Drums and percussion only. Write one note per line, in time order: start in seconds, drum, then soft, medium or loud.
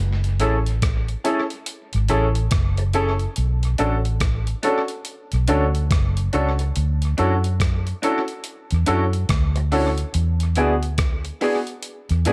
0.24 closed hi-hat soft
0.40 closed hi-hat medium
0.66 closed hi-hat soft
0.82 kick medium
0.82 cross-stick medium
0.82 closed hi-hat medium
1.08 closed hi-hat soft
1.25 closed hi-hat medium
1.50 closed hi-hat soft
1.66 closed hi-hat medium
1.93 closed hi-hat soft
2.08 closed hi-hat medium
2.35 closed hi-hat medium
2.51 kick loud
2.51 cross-stick loud
2.51 closed hi-hat medium
2.77 closed hi-hat medium
2.93 closed hi-hat medium
3.19 closed hi-hat soft
3.36 closed hi-hat medium
3.63 closed hi-hat soft
3.78 closed hi-hat medium
4.05 closed hi-hat soft
4.20 kick medium
4.20 cross-stick loud
4.20 closed hi-hat medium
4.47 closed hi-hat soft
4.63 closed hi-hat medium
4.88 closed hi-hat soft
5.05 closed hi-hat medium
5.32 closed hi-hat medium
5.48 closed hi-hat medium
5.75 closed hi-hat medium
5.91 kick loud
5.91 cross-stick loud
5.91 closed hi-hat medium
6.17 closed hi-hat medium
6.33 closed hi-hat medium
6.59 closed hi-hat soft
6.76 closed hi-hat medium
7.02 closed hi-hat soft
7.18 closed hi-hat medium
7.44 closed hi-hat soft
7.60 kick medium
7.60 cross-stick loud
7.60 closed hi-hat medium
7.87 closed hi-hat soft
8.03 closed hi-hat medium
8.28 closed hi-hat medium
8.44 closed hi-hat medium
8.71 closed hi-hat soft
8.86 closed hi-hat medium
9.13 closed hi-hat medium
9.29 kick loud
9.29 cross-stick loud
9.29 closed hi-hat medium
9.56 closed hi-hat soft
9.72 open hi-hat medium
9.98 closed hi-hat medium
10.14 closed hi-hat medium
10.40 closed hi-hat soft
10.55 closed hi-hat medium
10.83 closed hi-hat medium
10.98 kick medium
10.98 cross-stick loud
10.98 closed hi-hat loud
11.25 closed hi-hat soft
11.41 open hi-hat medium
11.67 closed hi-hat soft
11.83 closed hi-hat medium
12.09 closed hi-hat soft
12.25 closed hi-hat medium